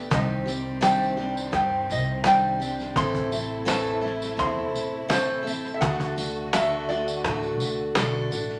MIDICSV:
0, 0, Header, 1, 7, 480
1, 0, Start_track
1, 0, Tempo, 713436
1, 80, Time_signature, 4, 2, 24, 8
1, 5783, End_track
2, 0, Start_track
2, 0, Title_t, "Resonator guitar played with a steel bar"
2, 0, Program_c, 0, 25
2, 95, Note_on_c, 0, 75, 91
2, 554, Note_off_c, 0, 75, 0
2, 557, Note_on_c, 0, 79, 94
2, 1031, Note_off_c, 0, 79, 0
2, 1039, Note_on_c, 0, 79, 90
2, 1286, Note_off_c, 0, 79, 0
2, 1292, Note_on_c, 0, 75, 83
2, 1509, Note_off_c, 0, 75, 0
2, 1524, Note_on_c, 0, 79, 102
2, 1998, Note_on_c, 0, 84, 122
2, 2015, Note_off_c, 0, 79, 0
2, 2450, Note_off_c, 0, 84, 0
2, 2477, Note_on_c, 0, 81, 92
2, 2954, Note_off_c, 0, 81, 0
2, 2957, Note_on_c, 0, 84, 95
2, 3435, Note_on_c, 0, 72, 89
2, 3451, Note_off_c, 0, 84, 0
2, 3863, Note_on_c, 0, 76, 69
2, 3882, Note_off_c, 0, 72, 0
2, 3907, Note_on_c, 0, 78, 98
2, 3913, Note_off_c, 0, 76, 0
2, 4365, Note_off_c, 0, 78, 0
2, 4400, Note_on_c, 0, 76, 89
2, 4633, Note_on_c, 0, 74, 82
2, 4645, Note_off_c, 0, 76, 0
2, 5569, Note_off_c, 0, 74, 0
2, 5783, End_track
3, 0, Start_track
3, 0, Title_t, "Steel-string acoustic guitar"
3, 0, Program_c, 1, 25
3, 0, Note_on_c, 1, 57, 44
3, 0, Note_on_c, 1, 59, 44
3, 0, Note_on_c, 1, 62, 46
3, 0, Note_on_c, 1, 67, 49
3, 71, Note_on_c, 1, 48, 72
3, 72, Note_off_c, 1, 57, 0
3, 72, Note_off_c, 1, 67, 0
3, 74, Note_off_c, 1, 59, 0
3, 74, Note_on_c, 1, 51, 79
3, 75, Note_on_c, 1, 55, 75
3, 77, Note_on_c, 1, 60, 78
3, 78, Note_off_c, 1, 62, 0
3, 81, Note_on_c, 1, 67, 86
3, 298, Note_off_c, 1, 67, 0
3, 306, Note_on_c, 1, 67, 55
3, 308, Note_off_c, 1, 55, 0
3, 311, Note_off_c, 1, 60, 0
3, 315, Note_off_c, 1, 48, 0
3, 317, Note_off_c, 1, 51, 0
3, 317, Note_on_c, 1, 55, 45
3, 319, Note_on_c, 1, 60, 43
3, 538, Note_off_c, 1, 55, 0
3, 543, Note_on_c, 1, 48, 91
3, 545, Note_off_c, 1, 60, 0
3, 545, Note_on_c, 1, 51, 91
3, 546, Note_off_c, 1, 67, 0
3, 546, Note_on_c, 1, 55, 87
3, 552, Note_on_c, 1, 62, 89
3, 553, Note_on_c, 1, 60, 81
3, 554, Note_on_c, 1, 67, 91
3, 778, Note_off_c, 1, 67, 0
3, 782, Note_off_c, 1, 62, 0
3, 786, Note_on_c, 1, 67, 55
3, 788, Note_off_c, 1, 60, 0
3, 790, Note_on_c, 1, 62, 47
3, 791, Note_off_c, 1, 48, 0
3, 792, Note_off_c, 1, 51, 0
3, 793, Note_off_c, 1, 55, 0
3, 796, Note_on_c, 1, 60, 49
3, 803, Note_on_c, 1, 55, 42
3, 1014, Note_off_c, 1, 55, 0
3, 1017, Note_off_c, 1, 60, 0
3, 1022, Note_on_c, 1, 55, 55
3, 1025, Note_on_c, 1, 60, 61
3, 1027, Note_off_c, 1, 67, 0
3, 1034, Note_off_c, 1, 62, 0
3, 1035, Note_on_c, 1, 67, 68
3, 1510, Note_off_c, 1, 55, 0
3, 1511, Note_off_c, 1, 60, 0
3, 1516, Note_off_c, 1, 67, 0
3, 1516, Note_on_c, 1, 48, 73
3, 1518, Note_on_c, 1, 51, 79
3, 1520, Note_on_c, 1, 55, 72
3, 1523, Note_on_c, 1, 60, 83
3, 1524, Note_on_c, 1, 62, 88
3, 1526, Note_on_c, 1, 67, 80
3, 1739, Note_off_c, 1, 67, 0
3, 1747, Note_off_c, 1, 62, 0
3, 1747, Note_on_c, 1, 67, 50
3, 1748, Note_off_c, 1, 55, 0
3, 1751, Note_off_c, 1, 60, 0
3, 1755, Note_on_c, 1, 62, 54
3, 1756, Note_on_c, 1, 55, 42
3, 1757, Note_off_c, 1, 48, 0
3, 1758, Note_off_c, 1, 51, 0
3, 1759, Note_on_c, 1, 60, 44
3, 1992, Note_off_c, 1, 67, 0
3, 1993, Note_off_c, 1, 60, 0
3, 1993, Note_on_c, 1, 52, 80
3, 1994, Note_on_c, 1, 45, 71
3, 1996, Note_off_c, 1, 55, 0
3, 1996, Note_off_c, 1, 62, 0
3, 1998, Note_on_c, 1, 57, 81
3, 1999, Note_on_c, 1, 64, 82
3, 2001, Note_on_c, 1, 60, 83
3, 2001, Note_on_c, 1, 69, 93
3, 2223, Note_off_c, 1, 69, 0
3, 2224, Note_off_c, 1, 64, 0
3, 2229, Note_off_c, 1, 60, 0
3, 2231, Note_off_c, 1, 57, 0
3, 2231, Note_on_c, 1, 69, 52
3, 2232, Note_on_c, 1, 64, 48
3, 2235, Note_off_c, 1, 52, 0
3, 2236, Note_off_c, 1, 45, 0
3, 2237, Note_on_c, 1, 60, 49
3, 2239, Note_on_c, 1, 57, 44
3, 2455, Note_off_c, 1, 57, 0
3, 2455, Note_off_c, 1, 60, 0
3, 2457, Note_on_c, 1, 45, 80
3, 2458, Note_off_c, 1, 64, 0
3, 2461, Note_off_c, 1, 69, 0
3, 2462, Note_on_c, 1, 52, 89
3, 2463, Note_on_c, 1, 57, 92
3, 2463, Note_on_c, 1, 60, 85
3, 2466, Note_on_c, 1, 64, 94
3, 2469, Note_on_c, 1, 69, 87
3, 2689, Note_off_c, 1, 69, 0
3, 2692, Note_off_c, 1, 64, 0
3, 2697, Note_off_c, 1, 60, 0
3, 2697, Note_on_c, 1, 69, 50
3, 2698, Note_off_c, 1, 57, 0
3, 2700, Note_on_c, 1, 64, 51
3, 2705, Note_on_c, 1, 60, 47
3, 2706, Note_on_c, 1, 57, 46
3, 2707, Note_off_c, 1, 45, 0
3, 2710, Note_off_c, 1, 52, 0
3, 2930, Note_off_c, 1, 57, 0
3, 2935, Note_off_c, 1, 60, 0
3, 2939, Note_on_c, 1, 57, 62
3, 2943, Note_off_c, 1, 64, 0
3, 2943, Note_on_c, 1, 60, 59
3, 2945, Note_off_c, 1, 69, 0
3, 2951, Note_on_c, 1, 64, 60
3, 2953, Note_on_c, 1, 69, 66
3, 3418, Note_off_c, 1, 64, 0
3, 3420, Note_off_c, 1, 60, 0
3, 3421, Note_on_c, 1, 45, 82
3, 3422, Note_on_c, 1, 52, 77
3, 3425, Note_off_c, 1, 57, 0
3, 3426, Note_on_c, 1, 64, 85
3, 3427, Note_on_c, 1, 57, 84
3, 3428, Note_off_c, 1, 69, 0
3, 3428, Note_on_c, 1, 60, 79
3, 3431, Note_on_c, 1, 69, 88
3, 3643, Note_off_c, 1, 69, 0
3, 3651, Note_on_c, 1, 69, 53
3, 3652, Note_off_c, 1, 60, 0
3, 3653, Note_off_c, 1, 64, 0
3, 3658, Note_off_c, 1, 57, 0
3, 3661, Note_on_c, 1, 60, 41
3, 3661, Note_on_c, 1, 64, 46
3, 3666, Note_on_c, 1, 57, 39
3, 3669, Note_off_c, 1, 45, 0
3, 3669, Note_off_c, 1, 52, 0
3, 3902, Note_off_c, 1, 57, 0
3, 3904, Note_off_c, 1, 69, 0
3, 3907, Note_on_c, 1, 50, 75
3, 3908, Note_off_c, 1, 60, 0
3, 3909, Note_off_c, 1, 64, 0
3, 3910, Note_on_c, 1, 57, 75
3, 3911, Note_on_c, 1, 62, 77
3, 3916, Note_on_c, 1, 69, 81
3, 3918, Note_on_c, 1, 66, 86
3, 4138, Note_off_c, 1, 69, 0
3, 4145, Note_off_c, 1, 66, 0
3, 4146, Note_on_c, 1, 69, 46
3, 4150, Note_off_c, 1, 62, 0
3, 4152, Note_off_c, 1, 50, 0
3, 4153, Note_off_c, 1, 57, 0
3, 4153, Note_on_c, 1, 66, 48
3, 4158, Note_on_c, 1, 62, 41
3, 4386, Note_off_c, 1, 62, 0
3, 4389, Note_off_c, 1, 69, 0
3, 4391, Note_off_c, 1, 66, 0
3, 4394, Note_on_c, 1, 62, 93
3, 4395, Note_on_c, 1, 50, 84
3, 4397, Note_on_c, 1, 57, 87
3, 4397, Note_on_c, 1, 69, 96
3, 4399, Note_on_c, 1, 66, 96
3, 4629, Note_off_c, 1, 69, 0
3, 4634, Note_off_c, 1, 66, 0
3, 4635, Note_off_c, 1, 62, 0
3, 4636, Note_off_c, 1, 50, 0
3, 4637, Note_off_c, 1, 57, 0
3, 4637, Note_on_c, 1, 69, 51
3, 4642, Note_on_c, 1, 66, 47
3, 4646, Note_on_c, 1, 62, 41
3, 4877, Note_off_c, 1, 62, 0
3, 4877, Note_off_c, 1, 69, 0
3, 4877, Note_on_c, 1, 57, 57
3, 4880, Note_off_c, 1, 66, 0
3, 4885, Note_on_c, 1, 62, 66
3, 4891, Note_on_c, 1, 66, 65
3, 4892, Note_on_c, 1, 69, 66
3, 5343, Note_off_c, 1, 57, 0
3, 5350, Note_off_c, 1, 66, 0
3, 5351, Note_off_c, 1, 62, 0
3, 5351, Note_off_c, 1, 69, 0
3, 5351, Note_on_c, 1, 50, 83
3, 5351, Note_on_c, 1, 57, 82
3, 5358, Note_on_c, 1, 66, 91
3, 5359, Note_on_c, 1, 62, 92
3, 5359, Note_on_c, 1, 69, 99
3, 5583, Note_off_c, 1, 69, 0
3, 5591, Note_on_c, 1, 69, 55
3, 5592, Note_off_c, 1, 66, 0
3, 5595, Note_off_c, 1, 50, 0
3, 5595, Note_off_c, 1, 57, 0
3, 5599, Note_off_c, 1, 62, 0
3, 5600, Note_on_c, 1, 66, 50
3, 5606, Note_on_c, 1, 62, 44
3, 5783, Note_off_c, 1, 62, 0
3, 5783, Note_off_c, 1, 66, 0
3, 5783, Note_off_c, 1, 69, 0
3, 5783, End_track
4, 0, Start_track
4, 0, Title_t, "String section"
4, 0, Program_c, 2, 48
4, 87, Note_on_c, 2, 60, 94
4, 92, Note_on_c, 2, 48, 86
4, 92, Note_on_c, 2, 51, 73
4, 1982, Note_off_c, 2, 60, 0
4, 1984, Note_off_c, 2, 51, 0
4, 2001, Note_on_c, 2, 64, 92
4, 2008, Note_on_c, 2, 57, 75
4, 3895, Note_off_c, 2, 48, 0
4, 3899, Note_off_c, 2, 64, 0
4, 3902, Note_off_c, 2, 57, 0
4, 3909, Note_on_c, 2, 50, 86
4, 3914, Note_on_c, 2, 57, 75
4, 3914, Note_on_c, 2, 66, 91
4, 5783, Note_off_c, 2, 50, 0
4, 5783, Note_off_c, 2, 57, 0
4, 5783, Note_off_c, 2, 66, 0
4, 5783, End_track
5, 0, Start_track
5, 0, Title_t, "Upright bass"
5, 0, Program_c, 3, 32
5, 82, Note_on_c, 3, 36, 106
5, 1013, Note_off_c, 3, 36, 0
5, 1039, Note_on_c, 3, 43, 89
5, 1276, Note_on_c, 3, 36, 96
5, 1286, Note_off_c, 3, 43, 0
5, 1969, Note_off_c, 3, 36, 0
5, 2003, Note_on_c, 3, 33, 110
5, 2932, Note_off_c, 3, 33, 0
5, 2961, Note_on_c, 3, 40, 98
5, 3196, Note_off_c, 3, 40, 0
5, 3196, Note_on_c, 3, 33, 101
5, 3889, Note_off_c, 3, 33, 0
5, 3917, Note_on_c, 3, 38, 114
5, 4850, Note_off_c, 3, 38, 0
5, 4877, Note_on_c, 3, 33, 89
5, 5121, Note_off_c, 3, 33, 0
5, 5121, Note_on_c, 3, 38, 91
5, 5347, Note_off_c, 3, 38, 0
5, 5360, Note_on_c, 3, 35, 84
5, 5575, Note_off_c, 3, 35, 0
5, 5596, Note_on_c, 3, 33, 80
5, 5783, Note_off_c, 3, 33, 0
5, 5783, End_track
6, 0, Start_track
6, 0, Title_t, "Cajon"
6, 76, Note_on_c, 9, 36, 93
6, 143, Note_off_c, 9, 36, 0
6, 555, Note_on_c, 9, 38, 83
6, 622, Note_off_c, 9, 38, 0
6, 1029, Note_on_c, 9, 36, 82
6, 1029, Note_on_c, 9, 38, 26
6, 1096, Note_off_c, 9, 36, 0
6, 1096, Note_off_c, 9, 38, 0
6, 1147, Note_on_c, 9, 38, 24
6, 1215, Note_off_c, 9, 38, 0
6, 1507, Note_on_c, 9, 38, 84
6, 1574, Note_off_c, 9, 38, 0
6, 1753, Note_on_c, 9, 38, 25
6, 1820, Note_off_c, 9, 38, 0
6, 1991, Note_on_c, 9, 36, 82
6, 2058, Note_off_c, 9, 36, 0
6, 2117, Note_on_c, 9, 36, 63
6, 2185, Note_off_c, 9, 36, 0
6, 2476, Note_on_c, 9, 38, 86
6, 2543, Note_off_c, 9, 38, 0
6, 2954, Note_on_c, 9, 36, 84
6, 2954, Note_on_c, 9, 38, 26
6, 3021, Note_off_c, 9, 36, 0
6, 3021, Note_off_c, 9, 38, 0
6, 3076, Note_on_c, 9, 38, 26
6, 3144, Note_off_c, 9, 38, 0
6, 3430, Note_on_c, 9, 38, 88
6, 3497, Note_off_c, 9, 38, 0
6, 3673, Note_on_c, 9, 38, 26
6, 3740, Note_off_c, 9, 38, 0
6, 3914, Note_on_c, 9, 36, 95
6, 3981, Note_off_c, 9, 36, 0
6, 4036, Note_on_c, 9, 36, 66
6, 4103, Note_off_c, 9, 36, 0
6, 4158, Note_on_c, 9, 38, 27
6, 4225, Note_off_c, 9, 38, 0
6, 4394, Note_on_c, 9, 38, 92
6, 4461, Note_off_c, 9, 38, 0
6, 4761, Note_on_c, 9, 38, 28
6, 4828, Note_off_c, 9, 38, 0
6, 4874, Note_on_c, 9, 36, 93
6, 4874, Note_on_c, 9, 38, 29
6, 4941, Note_off_c, 9, 36, 0
6, 4941, Note_off_c, 9, 38, 0
6, 5001, Note_on_c, 9, 38, 27
6, 5069, Note_off_c, 9, 38, 0
6, 5350, Note_on_c, 9, 38, 98
6, 5418, Note_off_c, 9, 38, 0
6, 5595, Note_on_c, 9, 38, 29
6, 5663, Note_off_c, 9, 38, 0
6, 5783, End_track
7, 0, Start_track
7, 0, Title_t, "Drums"
7, 77, Note_on_c, 9, 38, 29
7, 80, Note_on_c, 9, 36, 95
7, 89, Note_on_c, 9, 54, 30
7, 145, Note_off_c, 9, 38, 0
7, 148, Note_off_c, 9, 36, 0
7, 156, Note_off_c, 9, 54, 0
7, 318, Note_on_c, 9, 38, 29
7, 322, Note_on_c, 9, 54, 77
7, 385, Note_off_c, 9, 38, 0
7, 390, Note_off_c, 9, 54, 0
7, 556, Note_on_c, 9, 38, 85
7, 559, Note_on_c, 9, 54, 93
7, 624, Note_off_c, 9, 38, 0
7, 626, Note_off_c, 9, 54, 0
7, 687, Note_on_c, 9, 54, 28
7, 755, Note_off_c, 9, 54, 0
7, 799, Note_on_c, 9, 38, 30
7, 866, Note_off_c, 9, 38, 0
7, 923, Note_on_c, 9, 54, 68
7, 990, Note_off_c, 9, 54, 0
7, 1040, Note_on_c, 9, 36, 72
7, 1041, Note_on_c, 9, 38, 26
7, 1108, Note_off_c, 9, 36, 0
7, 1109, Note_off_c, 9, 38, 0
7, 1276, Note_on_c, 9, 38, 30
7, 1282, Note_on_c, 9, 54, 75
7, 1343, Note_off_c, 9, 38, 0
7, 1349, Note_off_c, 9, 54, 0
7, 1517, Note_on_c, 9, 38, 94
7, 1518, Note_on_c, 9, 54, 86
7, 1584, Note_off_c, 9, 38, 0
7, 1585, Note_off_c, 9, 54, 0
7, 1761, Note_on_c, 9, 54, 75
7, 1766, Note_on_c, 9, 38, 31
7, 1828, Note_off_c, 9, 54, 0
7, 1833, Note_off_c, 9, 38, 0
7, 1879, Note_on_c, 9, 54, 27
7, 1885, Note_on_c, 9, 38, 27
7, 1946, Note_off_c, 9, 54, 0
7, 1953, Note_off_c, 9, 38, 0
7, 2001, Note_on_c, 9, 54, 29
7, 2002, Note_on_c, 9, 36, 99
7, 2008, Note_on_c, 9, 38, 31
7, 2068, Note_off_c, 9, 54, 0
7, 2069, Note_off_c, 9, 36, 0
7, 2075, Note_off_c, 9, 38, 0
7, 2235, Note_on_c, 9, 54, 80
7, 2245, Note_on_c, 9, 38, 29
7, 2303, Note_off_c, 9, 54, 0
7, 2312, Note_off_c, 9, 38, 0
7, 2473, Note_on_c, 9, 54, 91
7, 2479, Note_on_c, 9, 38, 89
7, 2540, Note_off_c, 9, 54, 0
7, 2546, Note_off_c, 9, 38, 0
7, 2598, Note_on_c, 9, 54, 27
7, 2665, Note_off_c, 9, 54, 0
7, 2726, Note_on_c, 9, 38, 28
7, 2794, Note_off_c, 9, 38, 0
7, 2839, Note_on_c, 9, 54, 68
7, 2847, Note_on_c, 9, 38, 28
7, 2906, Note_off_c, 9, 54, 0
7, 2915, Note_off_c, 9, 38, 0
7, 2961, Note_on_c, 9, 36, 69
7, 2968, Note_on_c, 9, 38, 29
7, 3028, Note_off_c, 9, 36, 0
7, 3035, Note_off_c, 9, 38, 0
7, 3199, Note_on_c, 9, 54, 80
7, 3203, Note_on_c, 9, 38, 28
7, 3266, Note_off_c, 9, 54, 0
7, 3271, Note_off_c, 9, 38, 0
7, 3439, Note_on_c, 9, 38, 93
7, 3440, Note_on_c, 9, 54, 96
7, 3506, Note_off_c, 9, 38, 0
7, 3507, Note_off_c, 9, 54, 0
7, 3681, Note_on_c, 9, 54, 75
7, 3683, Note_on_c, 9, 38, 29
7, 3748, Note_off_c, 9, 54, 0
7, 3750, Note_off_c, 9, 38, 0
7, 3800, Note_on_c, 9, 38, 27
7, 3803, Note_on_c, 9, 54, 27
7, 3867, Note_off_c, 9, 38, 0
7, 3870, Note_off_c, 9, 54, 0
7, 3915, Note_on_c, 9, 38, 30
7, 3917, Note_on_c, 9, 36, 92
7, 3982, Note_off_c, 9, 38, 0
7, 3984, Note_off_c, 9, 36, 0
7, 4043, Note_on_c, 9, 54, 27
7, 4110, Note_off_c, 9, 54, 0
7, 4153, Note_on_c, 9, 38, 29
7, 4156, Note_on_c, 9, 54, 85
7, 4220, Note_off_c, 9, 38, 0
7, 4223, Note_off_c, 9, 54, 0
7, 4395, Note_on_c, 9, 38, 91
7, 4397, Note_on_c, 9, 54, 93
7, 4462, Note_off_c, 9, 38, 0
7, 4464, Note_off_c, 9, 54, 0
7, 4635, Note_on_c, 9, 38, 30
7, 4643, Note_on_c, 9, 54, 27
7, 4702, Note_off_c, 9, 38, 0
7, 4710, Note_off_c, 9, 54, 0
7, 4762, Note_on_c, 9, 54, 72
7, 4829, Note_off_c, 9, 54, 0
7, 4874, Note_on_c, 9, 38, 30
7, 4877, Note_on_c, 9, 36, 69
7, 4877, Note_on_c, 9, 54, 29
7, 4942, Note_off_c, 9, 38, 0
7, 4944, Note_off_c, 9, 36, 0
7, 4945, Note_off_c, 9, 54, 0
7, 4996, Note_on_c, 9, 54, 27
7, 5063, Note_off_c, 9, 54, 0
7, 5114, Note_on_c, 9, 54, 73
7, 5117, Note_on_c, 9, 38, 28
7, 5181, Note_off_c, 9, 54, 0
7, 5184, Note_off_c, 9, 38, 0
7, 5360, Note_on_c, 9, 54, 87
7, 5361, Note_on_c, 9, 38, 99
7, 5427, Note_off_c, 9, 54, 0
7, 5428, Note_off_c, 9, 38, 0
7, 5597, Note_on_c, 9, 54, 73
7, 5600, Note_on_c, 9, 38, 28
7, 5665, Note_off_c, 9, 54, 0
7, 5667, Note_off_c, 9, 38, 0
7, 5715, Note_on_c, 9, 38, 27
7, 5782, Note_off_c, 9, 38, 0
7, 5783, End_track
0, 0, End_of_file